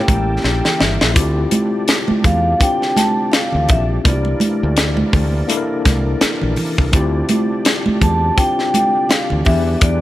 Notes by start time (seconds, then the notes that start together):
Already playing: C#3 A#3 C#4 E4 G4 A4 G5
0.08 A1 A#5, kick, closed hi-hat, high conga
0.44 A#1 G5, snare
0.65 snare, low conga
0.79 G1 E5, snare, low conga
1.01 A#1, snare
1.14 D2 C3 D3 G3 C4 D4 E4 F4 G4, kick, closed hi-hat
1.51 closed hi-hat, high conga
1.88 snare, closed hi-hat, muted conga
2.08 muted fingered electric bass stroke, high conga
2.24 E2 F5, kick, closed hi-hat
2.59 C4 D4 F4 G4 G5, kick, closed hi-hat, muted conga
2.82 snare
2.96 A5, snare, closed hi-hat, high conga
3.32 F5, snare, closed hi-hat
3.52 D2, low conga
3.69 A#1 E5, kick, closed hi-hat, low conga
4.04 C2 E3 A#3 D4 E4 F4 D5, kick, closed hi-hat, muted conga
4.13 G4
4.25 muted conga
4.40 closed hi-hat, high conga
4.63 D2
4.77 snare, closed hi-hat
4.97 high conga
5.13 D2, kick, open hi-hat
5.48 A#3 D4 E4 A4, closed hi-hat, muted conga
5.57 A#4
5.85 C2, kick, snare, closed hi-hat, high conga
6.21 muted fingered electric bass stroke, snare, closed hi-hat, muted conga
6.42 A#1, low conga
6.56 open hi-hat, low conga
6.78 C2, kick
6.92 D2 D3 G3 C4 D4 E4 F4 G4, kick, closed hi-hat
7.29 closed hi-hat, high conga
7.65 snare, closed hi-hat, muted conga
7.86 muted fingered electric bass stroke, muted conga, high conga
8.01 E2 A5, kick, closed hi-hat
8.37 C4 D4 F4 G4 G5, kick, closed hi-hat
8.59 snare
8.74 closed hi-hat, high conga
9.09 F5, snare, closed hi-hat, muted conga
9.30 D2, muted conga, low conga
9.44 E2 D3 G3 B3 D4 E4 G4 E5, kick, open hi-hat, low conga
9.81 E2 D5, kick, closed hi-hat